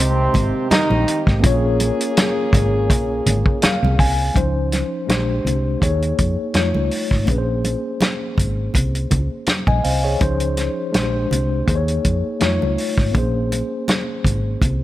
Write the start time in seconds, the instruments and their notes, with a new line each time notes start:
Already playing: fingered electric bass C2, trombone section C3 C4, french horn section C3 A#3 G4, tine electric piano G#3 C4 D#4 G4 D#5
0.34 fingered electric bass G#1, kick, closed hi-hat, low conga
0.70 trombone section D#3 D#4, muted fingered electric bass stroke, snare, closed hi-hat, high conga
0.90 fingered electric bass A#1, high conga
1.08 closed hi-hat
1.27 fingered electric bass G#1, kick, snare
1.40 tine electric piano A#3 C#4 F4, french horn section A#3 C#4 G#4, closed hi-hat, muted conga
1.44 fingered electric bass A#1, tine electric piano G#4 C#5, kick
1.80 closed hi-hat, muted conga
2.00 closed hi-hat
2.17 snare, closed hi-hat, high conga
2.53 fingered electric bass G#1, kick, closed hi-hat, low conga
2.90 fingered electric bass A#1, kick, closed hi-hat
3.26 fingered electric bass G#1, closed hi-hat, low conga
3.46 kick
3.62 tine electric piano F5, snare, closed hi-hat, high conga
3.83 fingered electric bass C2, high conga
3.99 fingered electric bass C2, tine electric piano G#5, kick, open hi-hat
4.34 fingered electric bass C#2, tine electric piano F3 C#4 D#4 C5, kick, closed hi-hat, muted conga
4.72 snare, closed hi-hat, muted conga
5.07 fingered electric bass A#1, tine electric piano G#3 D4 G4 C5, snare, closed hi-hat, high conga
5.45 fingered electric bass C2, closed hi-hat, low conga
5.80 fingered electric bass D#2, tine electric piano A#3 D#4 G#4 C#5, kick, closed hi-hat, muted conga
6.02 closed hi-hat
6.18 fingered electric bass F2, kick, closed hi-hat
6.54 fingered electric bass F2, tine electric piano G#3 D#4 F4 C#5, snare, closed hi-hat, high conga
6.60 tine electric piano A3
6.75 fingered electric bass C#2, high conga
6.91 open hi-hat
7.11 fingered electric bass G#1, kick, snare
7.25 fingered electric bass A#1, tine electric piano A#3 C#4, kick, closed hi-hat, muted conga
7.30 tine electric piano G#4 B4
7.38 tine electric piano C5
7.64 closed hi-hat, muted conga
8.01 snare, closed hi-hat, high conga
8.38 fingered electric bass G#1, kick, closed hi-hat, low conga
8.74 fingered electric bass C2, kick, closed hi-hat, muted conga, low conga
8.95 closed hi-hat
9.11 fingered electric bass C#2, kick, closed hi-hat, low conga
9.46 snare, closed hi-hat, high conga
9.67 fingered electric bass A#1, tine electric piano D#5 G#5, kick, high conga
9.84 fingered electric bass C2, tine electric piano C5 F5, open hi-hat
10.04 tine electric piano G#4 C#5
10.20 fingered electric bass C#2, tine electric piano F3 C#4 D#4 C5, kick, closed hi-hat, muted conga
10.40 closed hi-hat
10.57 snare, closed hi-hat, muted conga
10.92 fingered electric bass A#1, tine electric piano G#3 D4 G4 C5, snare, closed hi-hat, high conga
11.31 fingered electric bass C2, closed hi-hat, low conga
11.66 fingered electric bass D#2, tine electric piano A#3 D#4 G#4 C5, kick, closed hi-hat, muted conga
11.76 tine electric piano C#5
11.88 closed hi-hat
12.04 fingered electric bass F2, kick, closed hi-hat
12.40 fingered electric bass F2, tine electric piano A3 D#4 F4 C#5, snare, closed hi-hat, high conga
12.62 fingered electric bass C#2, high conga
12.78 open hi-hat
12.97 fingered electric bass G#1, kick, snare
13.12 fingered electric bass A#1, tine electric piano A#3 C#4, kick, closed hi-hat, muted conga
13.16 tine electric piano G#4 C5
13.52 closed hi-hat, muted conga
13.88 snare, closed hi-hat, high conga
14.25 fingered electric bass G#1, kick, closed hi-hat, low conga
14.62 fingered electric bass C2, kick, closed hi-hat, muted conga, low conga